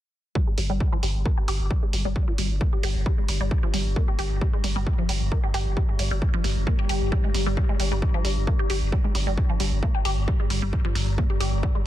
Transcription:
0.35 synth drone G2 G3, synth arpeggio sound G3, kick
0.47 synth arpeggio sound G#3
0.58 sub bass G1, synth arpeggio sound G3, open hi-hat
0.70 sub bass G1, synth arpeggio sound G3
0.80 kick
0.92 synth arpeggio sound F3
1.03 sub bass G1, synth arpeggio sound G3, open hi-hat
1.15 sub bass G1
1.25 synth arpeggio sound A#3, kick
1.38 synth arpeggio sound G4
1.48 sub bass G1, synth arpeggio sound G4, open hi-hat
1.60 sub bass G1
1.71 synth arpeggio sound G3, kick
1.83 synth arpeggio sound G#3
1.93 sub bass G1, synth arpeggio sound G3, open hi-hat
2.05 sub bass G1, synth arpeggio sound G3
2.16 kick
2.28 synth arpeggio sound F3
2.38 sub bass G1, synth arpeggio sound G3, open hi-hat
2.50 sub bass G1
2.61 synth arpeggio sound A#3, kick
2.73 synth arpeggio sound G4
2.83 sub bass G1, synth arpeggio sound G4, open hi-hat
2.95 sub bass G1
3.06 synth arpeggio sound G3, kick
3.18 synth arpeggio sound G#3
3.28 sub bass G1, synth arpeggio sound G3, open hi-hat
3.40 sub bass G1, synth arpeggio sound G3
3.51 kick
3.63 synth arpeggio sound F3
3.73 sub bass G1, synth arpeggio sound G3, open hi-hat
3.86 sub bass G1
3.96 synth arpeggio sound A#3, kick
4.08 synth arpeggio sound G4
4.19 sub bass G1, synth arpeggio sound G4, open hi-hat
4.31 sub bass G1
4.41 synth arpeggio sound G3, kick
4.53 synth arpeggio sound G#3
4.64 sub bass G1, synth arpeggio sound G3, open hi-hat
4.76 sub bass G1, synth arpeggio sound G3
4.87 kick
4.98 synth arpeggio sound F3
5.09 sub bass G1, synth arpeggio sound G3, open hi-hat
5.21 sub bass G1
5.32 synth arpeggio sound A#3, kick
5.44 synth arpeggio sound G4
5.54 sub bass G1, synth arpeggio sound G4, open hi-hat
5.66 sub bass G1
5.77 synth arpeggio sound G3, kick
5.89 synth arpeggio sound G#3
5.99 sub bass G1, synth arpeggio sound G3, open hi-hat
6.11 sub bass G1, synth arpeggio sound G3
6.22 kick
6.34 synth arpeggio sound F3
6.44 sub bass G1, synth arpeggio sound G3, open hi-hat
6.56 sub bass G1
6.67 synth arpeggio sound A#3, kick
6.79 synth arpeggio sound G4
6.89 sub bass G1, synth arpeggio sound G4, open hi-hat
7.01 sub bass G1
7.12 synth arpeggio sound G3, kick
7.24 synth arpeggio sound G#3
7.34 sub bass G1, synth arpeggio sound G3, open hi-hat
7.46 sub bass G1, synth arpeggio sound G3
7.57 synth arpeggio sound G3, kick
7.69 synth arpeggio sound G#3
7.80 sub bass G1, synth arpeggio sound G3, open hi-hat
7.92 sub bass G1, synth arpeggio sound G3
8.02 kick
8.14 synth arpeggio sound F3
8.25 sub bass G1, synth arpeggio sound G3, open hi-hat
8.37 sub bass G1
8.47 synth arpeggio sound A#3, kick
8.59 synth arpeggio sound G4
8.70 sub bass G1, synth arpeggio sound G4, open hi-hat
8.82 sub bass G1
8.92 synth arpeggio sound G3, kick
9.04 synth arpeggio sound G#3
9.15 sub bass G1, synth arpeggio sound G3, open hi-hat
9.27 sub bass G1, synth arpeggio sound G3
9.38 kick
9.49 synth arpeggio sound F3
9.60 sub bass G1, synth arpeggio sound G3, open hi-hat
9.72 sub bass G1
9.83 synth arpeggio sound A#3, kick
9.95 synth arpeggio sound G4
10.05 sub bass G1, synth arpeggio sound G4, open hi-hat
10.17 sub bass G1
10.28 synth arpeggio sound G3, kick
10.40 synth arpeggio sound G#3
10.50 sub bass G1, synth arpeggio sound G3, open hi-hat
10.62 sub bass G1, synth arpeggio sound G3
10.73 kick
10.85 synth arpeggio sound F3
10.95 sub bass G1, synth arpeggio sound G3, open hi-hat
11.07 sub bass G1
11.18 synth arpeggio sound A#3, kick
11.30 synth arpeggio sound G4
11.40 sub bass G1, synth arpeggio sound G4, open hi-hat
11.52 sub bass G1
11.63 synth arpeggio sound G3, kick
11.75 synth arpeggio sound G#3

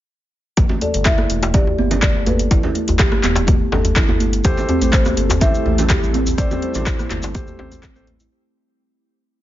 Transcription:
0.57 analog synth bass G1, kalimba A3, kick, closed hi-hat, djembe slap
0.69 muted conga, high conga, low conga
0.81 kalimba A4, marimba D5, closed hi-hat, djembe tone
0.94 analog synth bass G1, closed hi-hat
1.05 kalimba E4, marimba E5, kick, cross-stick, clap, closed hi-hat, muted conga, djembe tone
1.18 cross-stick, high conga
1.30 analog synth bass E1, kalimba A3, closed hi-hat
1.42 closed hi-hat, djembe slap, djembe tone
1.54 kalimba G4, marimba D5, kick, closed hi-hat, muted conga, low conga
1.67 djembe tone
1.78 analog synth bass G1, kalimba B3, high conga
1.91 closed hi-hat, muted conga, low conga
2.02 kalimba A3, marimba D5, kick, cross-stick, clap, closed hi-hat, djembe tone
2.15 analog synth bass G1
2.26 kalimba A4, marimba B4, closed hi-hat, muted conga, djembe tone, high conga
2.39 closed hi-hat
2.51 analog synth bass G1, kalimba E4, kick, closed hi-hat, djembe slap
2.63 muted conga, djembe tone, high conga, low conga
2.75 kalimba A3, closed hi-hat
2.88 analog synth bass G1, closed hi-hat, djembe tone
2.99 kalimba G4, kick, cross-stick, clap, closed hi-hat, muted conga
3.12 cross-stick, high conga
3.23 analog synth bass E1, kalimba B3, clap, closed hi-hat, djembe tone
3.35 closed hi-hat, djembe slap
3.47 kalimba A3, kick, closed hi-hat, muted conga, djembe tone, high conga
3.72 analog synth bass G1, kalimba A4, djembe slap, low conga
3.85 closed hi-hat, muted conga, djembe tone
3.96 kalimba E4, kick, cross-stick, clap, closed hi-hat, low conga
4.09 analog synth bass G1, high conga, djembe tone
4.20 kalimba A3, closed hi-hat, muted conga
4.33 closed hi-hat
4.44 analog synth bass A1, ambient pad G3 C4 E4 A4, felt piano A3 G4 C5, kalimba G4, kick, closed hi-hat, djembe slap, djembe tone, maracas
4.57 muted conga, high conga, low conga, maracas
4.69 kalimba C4, closed hi-hat, djembe tone
4.81 analog synth bass A1, felt piano A3 G4 C5, closed hi-hat, maracas
4.93 kalimba A3, marimba C5, kick, cross-stick, clap, closed hi-hat, muted conga, maracas
5.05 cross-stick, djembe tone, high conga, maracas
5.17 analog synth bass G1, kalimba A4, closed hi-hat
5.29 closed hi-hat, djembe slap, djembe tone, maracas
5.41 felt piano A3 G4 C5, kalimba E4, marimba E5, kick, closed hi-hat, muted conga, low conga, maracas
5.55 maracas
5.65 analog synth bass A1, kalimba A3, high conga, djembe tone
5.78 closed hi-hat, muted conga, low conga, maracas
5.90 kalimba G4, kick, cross-stick, clap, closed hi-hat, djembe tone, maracas
6.02 analog synth bass A1, maracas
6.14 kalimba C4, closed hi-hat, muted conga, high conga
6.26 closed hi-hat, djembe tone, maracas
6.38 analog synth bass A1, felt piano A3 G4 C5, ambient pad G4, marimba D5, kick, closed hi-hat, djembe slap, maracas
6.51 muted conga, djembe tone, high conga, low conga, maracas
6.62 kalimba A4, marimba C5, closed hi-hat
6.74 analog synth bass A1, felt piano A3 G4 C5, closed hi-hat, low conga, maracas
6.87 kalimba E4, kick, cross-stick, clap, closed hi-hat, djembe tone, maracas
6.99 cross-stick, high conga, maracas
7.11 analog synth bass G1, kalimba A3, clap, closed hi-hat, djembe tone
7.22 closed hi-hat, djembe slap, maracas
7.34 felt piano A3 G4 C5, kalimba G4, kick, closed hi-hat, muted conga, high conga, maracas
7.47 djembe tone, maracas
7.59 analog synth bass A1, felt piano A3 G4 C5, kalimba C4, djembe slap, low conga
7.71 closed hi-hat, muted conga, djembe tone, maracas
7.83 kick, cross-stick, clap, closed hi-hat, low conga, maracas
7.95 analog synth bass A1, felt piano A3 G4 C5, kalimba A3, high conga, maracas
8.07 kalimba A3, closed hi-hat, muted conga, djembe tone
8.20 kalimba E4, closed hi-hat, maracas

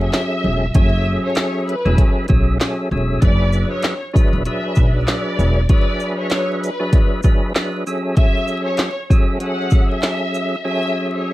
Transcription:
Already playing: tonewheel organ F#3 C#4 G#4 A4 E5
0.00 violin section E5
0.13 snare, clap, closed hi-hat
0.44 upright bass E1
0.74 upright bass F#1, tonewheel organ F#3 C#4 G#4 A4 E5, violin section E5, kick, closed hi-hat
1.25 violin section C#5
1.35 snare, clap, closed hi-hat
1.68 violin section B4, closed hi-hat
1.85 upright bass E1, tonewheel organ F#3 C#4 G#4 A4 E5
1.98 kick, closed hi-hat
2.28 upright bass B1, tonewheel organ F#3 C#4 G#4 A4 E5, kick, closed hi-hat
2.60 tonewheel organ F#3 C#4 G#4 A4 E5, snare, clap, closed hi-hat
2.91 upright bass E1, tonewheel organ F#3 C#4 G#4 A4 E5
3.21 upright bass F#1, tonewheel organ F#3 D4 G#4 B4 E5, violin section D5, kick, closed hi-hat
3.53 shaker
3.72 violin section C#5
3.83 snare, clap, closed hi-hat
4.13 tonewheel organ F#3 D4 G#4 B4 E5, kick, closed hi-hat, shaker
4.33 upright bass E1
4.45 tonewheel organ F#3 D4 G#4 B4 E5, violin section E5, closed hi-hat
4.75 upright bass B1, kick, shaker
4.96 violin section D5
5.08 snare, clap, closed hi-hat
5.39 upright bass E1, shaker
5.69 tonewheel organ F#3 D4 G#4 B4 E5, violin section D5, kick, closed hi-hat
6.00 shaker
6.19 violin section C#5
6.30 snare, clap, closed hi-hat
6.63 violin section B4, closed hi-hat, shaker
6.79 tonewheel organ F#3 D4 G#4 B4 E5
6.93 kick, closed hi-hat
7.23 tonewheel organ F#3 D4 G#4 B4 E5, kick, shaker
7.55 tonewheel organ F#3 D4 G#4 B4 E5, snare, clap, closed hi-hat
7.87 tonewheel organ F#3 C#4 G#4 A4 E5, shaker
8.16 tonewheel organ F#3 C#4 G#4 A4 E5, violin section E5, kick, closed hi-hat
8.47 shaker
8.65 violin section C#5
8.77 snare, clap, closed hi-hat
9.10 tonewheel organ F#3 C#4 G#4 A4 E5, kick, closed hi-hat, shaker
9.40 tonewheel organ F#3 C#4 G#4 A4 E5, violin section F#5, closed hi-hat
9.70 kick, shaker
9.89 violin section E5
10.03 snare, clap, closed hi-hat
10.34 shaker
10.63 tonewheel organ F#3 C#4 G#4 A4 E5, violin section E5
11.14 violin section C#5

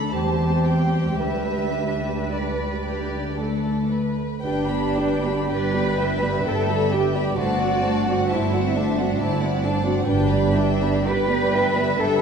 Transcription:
Already playing: double bass section D2, viola section A3 D4, violin section D4 A4 B5, cello section A4
0.13 double bass section E2, viola section G3 C4, violin section G4 C5 A5, cello section G4
0.64 violin section G5
1.20 double bass section D2, viola section D4, violin section B4 E5, cello section B4
2.30 violin section B4 D5
2.85 violin section G4
3.38 viola section A3, violin section A4
3.92 violin section B4
4.42 double bass section G1, viola section G3 D4, cello section D4, violin section B4 G5
4.68 viola section B3 G4, violin section D5 B5
4.96 viola section G3 D4, violin section B4 G5
5.23 viola section B3 G4, violin section D5 B5
5.49 double bass section G1, viola section G3 D4, violin section B4 D5 G5, cello section B4
5.73 viola section B3 G4, violin section D5 B5
5.97 viola section G3 D4, violin section B4 E5 G5
6.21 viola section B3 G4, violin section D5 B5
6.44 double bass section G1, viola section G3 D4, cello section A4, violin section B4 G5
6.68 viola section B3 G4, violin section D5 B5
6.91 viola section G3 D4, cello section G4, violin section B4 G5
7.14 viola section B3 G4, violin section D5 B5
7.36 double bass section G1, viola section A3 D4, cello section F#4, violin section C5 D5 A5
7.60 viola section C4 F#4, violin section D5 F#5
7.83 viola section A3 D4, violin section C5 A5
8.04 violin section D5 F#5
8.08 viola section C4 F#4
8.28 double bass section G1, viola section A3, cello section E4, violin section C5 E5 A5
8.32 viola section D4
8.53 viola section C4 F#4, violin section D5 F#5
8.76 viola section A3 D4, cello section D4, violin section C5 A5
8.99 viola section C4 F#4, violin section D5 F#5
9.20 double bass section G1, viola section A3 D4, cello section E4, violin section C5 D5 A5
9.41 viola section C4 F#4, violin section D5 F#5
9.63 viola section A3 D4, cello section D4, violin section C5 A5
9.83 viola section C4 F#4, violin section D5 F#5
10.06 double bass section G1, viola section G3 D4, cello section D4, violin section B4 G5
10.29 viola section B3 G4, violin section D5 B5
10.54 viola section G3 D4, violin section B4 E5 G5
10.81 viola section B3 G4, violin section D5 B5
11.04 double bass section G1, viola section G3 D4, violin section B4 D5 G5, cello section B4
11.30 viola section B3 G4, violin section D5 B5
11.52 viola section G3 D4, violin section B4 E5 G5
11.74 viola section B3 G4, violin section D5 B5
11.98 double bass section G1, viola section G3 D4, cello section A4, violin section B4 G5

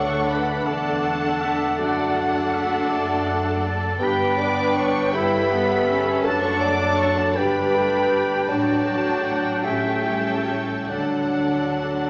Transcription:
Already playing: cello section D2, double bass section D2, timpani D3, harp D3 D4, bassoon A3, viola section D4 A4, clarinet D4, french horn section C#5, violin section D5 F#5 C#6, oboe F#5, flute F#5
0.28 harp A4, violin section B5
0.33 french horn section B4
0.65 double bass section E1, cello section E2, viola section D4 A4, french horn section A4, violin section D5 F#5 A5, oboe D5, harp D5
1.05 oboe F#5, harp F#5
1.41 harp D5, oboe E5
1.78 double bass section F#1, cello section F#2, harp F#2, viola section D4 A4, french horn section F#4, violin section D5 F#5 A5, oboe D5
2.17 harp A3, oboe F#5
2.54 harp A4, oboe E5
2.90 harp D4, oboe D5
3.27 harp D5, oboe F#5
3.65 harp A4, oboe A5
3.99 double bass section G1, cello section G2, harp G2, bassoon B3, viola section D4 B4, clarinet D4, french horn section G4, violin section D5 G5, flute G5
4.04 oboe B5
4.37 harp B3, french horn section D5, violin section D6
4.74 harp D4 G4, french horn section C#5, violin section C#6
5.12 harp G2, bassoon G3, viola section E4 A4, clarinet E4, french horn section B4, violin section C#5 B5, flute E5, oboe G5
5.50 harp A3, viola section B3, clarinet B3, oboe F#5
5.88 clarinet C#4, viola section C#4, harp C#4 A4, oboe E5
6.23 double bass section F#1, cello section F#2, harp F#2, bassoon F#3, clarinet D4, viola section D4, french horn section A4, violin section D5 F#5 A5, flute A5, oboe A5
6.41 french horn section C#5, violin section C#6
6.62 harp A3, french horn section D5, violin section D6
6.98 harp D4 A4, french horn section C#5, violin section C#6
7.17 french horn section A4, violin section A5
7.34 double bass section G1, cello section G2, harp G2, bassoon G3, clarinet D4, viola section D4 G4, french horn section B4, violin section D5 B5, flute G5, oboe G5
7.74 harp G3, bassoon A3
8.10 bassoon G3, harp D4 B4
8.48 double bass section A1, cello section A2, harp A2, bassoon F#3, french horn section D4, viola section D4 F#4, clarinet D4, violin section D5 A5, flute A5
8.84 french horn section A4, violin section A5
8.89 harp F#3
9.22 harp D4, french horn section F#4, violin section F#5
9.27 harp A4
9.63 double bass section A1, cello section A2, harp A2, bassoon G3, clarinet C#4, viola section C#4 A4, french horn section E4, flute E5, violin section E5 G5 A5
9.73 french horn section F#4
9.83 french horn section E4
9.90 french horn section F#4
10.01 french horn section E4
10.08 harp G3, french horn section F#4
10.18 french horn section E4
10.26 french horn section F#4
10.34 french horn section E4
10.44 french horn section F#4
10.50 harp C#4 A4, french horn section E4
10.89 double bass section D2, timpani D3, cello section D3, harp D3, bassoon F#3, french horn section D4, clarinet D4, viola section D4 A4, violin section D5 F#5 A5, flute F#5, oboe F#5
11.35 harp D4
11.78 harp F#4

